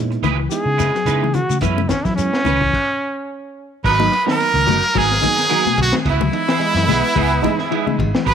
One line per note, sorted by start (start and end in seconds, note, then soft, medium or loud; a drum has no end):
0.00 0.16 A#2 medium
0.00 0.27 G#3 medium
0.00 0.27 B3 medium
0.00 0.19 C#4 loud
0.00 0.27 D#4 medium
0.00 0.27 E4 medium
0.11 muted clean electric guitar stroke medium
0.11 closed hi-hat soft
0.22 0.46 C#2 medium
0.22 0.36 D#3 medium
0.22 0.38 G#3 loud
0.22 0.37 D#4 loud
0.22 0.37 E4 loud
0.22 0.37 B4 loud
0.22 closed hi-hat medium
0.22 high conga medium
0.22 low conga medium
0.22 shekere soft
0.38 0.62 E3 medium
0.38 muted clean electric guitar stroke soft
0.50 0.82 G#3 medium
0.50 0.82 B3 medium
0.50 0.82 D#4 medium
0.50 0.82 E4 medium
0.50 1.36 G#4 loud
0.50 closed hi-hat medium
0.50 shekere medium
0.65 0.89 C#3 loud
0.65 muted clean electric guitar stroke soft
0.77 0.93 G#3 medium
0.77 0.94 D#4 medium
0.77 0.93 E4 medium
0.77 0.93 B4 medium
0.77 snare soft
0.77 closed hi-hat soft
0.77 high conga medium
0.77 shekere medium
0.94 1.18 F#3 medium
0.94 muted clean electric guitar stroke soft
0.94 snare soft
0.94 shekere soft
1.05 1.42 C#3 medium
1.05 1.24 G#3 medium
1.05 1.38 G#3 medium
1.05 1.38 B3 medium
1.05 1.24 D#4 medium
1.05 1.38 D#4 medium
1.05 1.24 E4 medium
1.05 1.38 E4 medium
1.05 1.24 B4 medium
1.05 closed hi-hat medium
1.05 shekere medium
1.23 1.33 E3 medium
1.23 high conga medium
1.34 1.58 E3 medium
1.34 1.61 F#4 loud
1.34 muted clean electric guitar stroke soft
1.34 closed hi-hat soft
1.34 low conga medium
1.34 shekere soft
1.49 1.60 C#3 medium
1.49 muted clean electric guitar stroke soft
1.49 closed hi-hat soft
1.49 high conga medium
1.49 shekere medium
1.61 1.85 F#2 medium
1.61 1.75 E3 loud
1.61 1.93 G#3 medium
1.61 1.93 B3 medium
1.61 1.80 C#4 medium
1.61 1.93 C#4 medium
1.61 1.90 E4 medium
1.61 1.80 E4 medium
1.61 1.93 E4 medium
1.61 1.80 B4 medium
1.61 kick loud
1.61 closed hi-hat medium
1.61 shekere medium
1.78 1.88 C#3 medium
1.78 high conga medium
1.88 2.03 D#3 medium
1.88 2.06 C#4 loud
1.88 muted clean electric guitar stroke soft
1.88 kick medium
1.88 snare medium
1.88 closed hi-hat medium
1.88 shekere medium
2.05 2.28 E3 medium
2.05 2.29 F#3 medium
2.05 2.15 E4 medium
2.05 kick medium
2.05 snare soft
2.05 closed hi-hat soft
2.05 shekere soft
2.16 2.49 G#3 medium
2.16 2.49 B3 medium
2.16 3.79 C#4 loud
2.16 2.49 C#4 medium
2.16 2.49 E4 medium
2.16 muted clean electric guitar stroke soft
2.16 closed hi-hat medium
2.16 shekere medium
2.33 muted clean electric guitar stroke soft
2.33 snare medium
2.44 2.68 C#2 medium
2.44 2.58 D#3 medium
2.44 2.61 C#4 medium
2.44 2.60 B4 loud
2.44 closed hi-hat medium
2.44 high conga medium
2.44 low conga loud
2.44 shekere soft
2.61 2.84 E3 medium
2.61 muted clean electric guitar stroke soft
2.61 kick medium
2.73 kick medium
2.73 crash medium
3.84 4.07 G#1 loud
3.84 3.99 F#3 medium
3.84 3.99 B3 medium
3.84 3.98 D#4 medium
3.84 3.98 A#4 medium
3.84 4.24 B4 loud
3.84 4.24 B4 medium
3.84 kick medium
3.84 crash medium
3.99 4.13 F#3 medium
3.99 4.23 F#3 medium
3.99 4.13 A#3 medium
3.99 4.13 B3 medium
3.99 4.13 D#4 loud
3.99 muted clean electric guitar stroke soft
3.99 high conga loud
4.11 muted clean electric guitar stroke medium
4.11 ride bell soft
4.25 4.50 D#3 medium
4.25 4.80 F#3 medium
4.25 4.80 A#3 medium
4.25 4.39 B3 soft
4.25 4.80 B3 medium
4.25 4.38 D#4 medium
4.25 4.80 D#4 medium
4.25 4.38 A#4 soft
4.25 snare medium
4.30 5.00 A#4 loud
4.40 muted clean electric guitar stroke soft
4.40 ride bell medium
4.54 4.64 C#2 medium
4.54 4.65 D#3 medium
4.66 4.79 F#1 medium
4.66 4.82 F#3 medium
4.66 4.90 F#3 medium
4.66 4.82 B3 medium
4.66 4.81 D#4 medium
4.66 4.81 A#4 medium
4.66 open hi-hat medium
4.66 high conga loud
4.66 low conga medium
4.82 muted clean electric guitar stroke medium
4.82 ride bell medium
4.94 5.18 G#1 medium
4.94 5.09 F#3 medium
4.94 5.18 F#3 medium
4.94 5.10 B3 medium
4.94 5.09 D#4 medium
4.94 5.08 A#4 loud
4.94 kick medium
4.94 ride bell medium
4.94 high conga medium
4.98 5.79 G#4 loud
4.98 5.79 G#4 medium
5.10 muted clean electric guitar stroke soft
5.10 snare soft
5.21 5.46 D#3 medium
5.21 5.38 F#3 medium
5.21 5.38 A#3 medium
5.21 5.38 B3 medium
5.21 5.39 D#4 medium
5.21 muted clean electric guitar stroke soft
5.21 kick medium
5.21 ride bell soft
5.21 high conga medium
5.36 5.48 B3 soft
5.36 5.48 D#4 soft
5.36 5.48 A#4 soft
5.36 snare soft
5.49 5.63 D#3 medium
5.49 5.64 F#3 medium
5.49 5.96 F#3 medium
5.49 5.97 A#3 medium
5.49 5.64 B3 medium
5.49 5.97 B3 medium
5.49 5.64 D#4 medium
5.49 5.97 F#4 medium
5.49 5.63 A#4 medium
5.49 ride bell medium
5.65 5.89 B2 medium
5.65 muted clean electric guitar stroke soft
5.65 muted fingered electric bass stroke soft
5.65 high conga medium
5.77 5.90 B1 medium
5.77 muted clean electric guitar stroke soft
5.77 kick medium
5.77 ride bell medium
5.77 low conga medium
5.81 5.93 F#4 medium
5.81 5.94 F#4 loud
5.93 6.04 D#3 medium
5.93 snare medium
5.93 high conga medium
6.05 6.28 C#2 loud
6.05 6.20 B3 medium
6.05 6.21 E4 loud
6.05 7.96 E4 medium
6.05 muted clean electric guitar stroke medium
6.05 kick loud
6.05 snare soft
6.05 ride bell medium
6.11 7.97 E4 medium
6.21 6.44 F#3 medium
6.21 muted clean electric guitar stroke medium
6.21 high conga medium
6.21 low conga medium
6.32 6.49 E3 medium
6.32 6.49 G#3 medium
6.32 6.49 B3 medium
6.32 6.49 D#4 medium
6.32 muted clean electric guitar stroke soft
6.32 ride bell medium
6.48 6.71 E3 medium
6.48 6.60 E4 medium
6.48 6.60 G#4 medium
6.48 snare medium
6.48 ride bell medium
6.60 7.07 E3 medium
6.60 7.07 G#3 medium
6.60 6.86 G#3 loud
6.60 7.07 B3 medium
6.60 7.07 D#5 medium
6.60 muted clean electric guitar stroke soft
6.60 ride bell medium
6.75 6.85 F#2 medium
6.75 6.87 E3 medium
6.75 snare soft
6.88 7.01 B1 medium
6.88 7.11 G#3 medium
6.88 7.15 B3 loud
6.88 7.03 B3 medium
6.88 7.03 E4 medium
6.88 7.02 G#4 medium
6.88 open hi-hat medium
6.88 high conga loud
6.88 low conga medium
7.03 muted clean electric guitar stroke medium
7.16 7.39 C#2 loud
7.16 7.38 G#3 medium
7.16 7.31 B3 medium
7.16 7.41 B3 loud
7.16 7.31 E4 medium
7.16 7.31 G#4 loud
7.16 kick medium
7.16 ride bell medium
7.32 muted clean electric guitar stroke medium
7.42 7.59 E3 loud
7.42 7.66 E3 medium
7.42 7.59 G#3 medium
7.42 7.56 G#3 medium
7.42 7.59 B3 medium
7.42 7.59 D#4 loud
7.42 muted clean electric guitar stroke soft
7.42 kick medium
7.42 ride bell soft
7.42 high conga loud
7.59 7.70 E4 soft
7.59 7.71 G#4 soft
7.59 snare soft
7.71 8.10 E3 medium
7.71 7.84 E3 medium
7.71 8.10 G#3 medium
7.71 8.11 G#3 medium
7.71 7.86 B3 medium
7.71 8.10 B3 medium
7.71 8.10 D#4 medium
7.71 7.86 E4 medium
7.71 7.85 G#4 medium
7.71 ride bell soft
7.86 8.09 C#3 medium
7.86 muted fingered electric bass stroke soft
7.86 muted clean electric guitar stroke medium
7.86 high conga medium
7.98 8.11 G#1 loud
7.98 muted clean electric guitar stroke soft
7.98 kick medium
7.98 ride bell medium
7.98 high conga medium
7.98 low conga medium
8.15 8.25 E3 medium
8.15 snare medium
8.15 high conga medium
8.25 8.34 G#1 loud
8.25 8.34 F#3 medium
8.25 8.34 B3 loud
8.25 8.34 A#4 loud
8.25 8.34 B4 loud
8.25 muted clean electric guitar stroke loud
8.25 kick medium
8.25 ride bell medium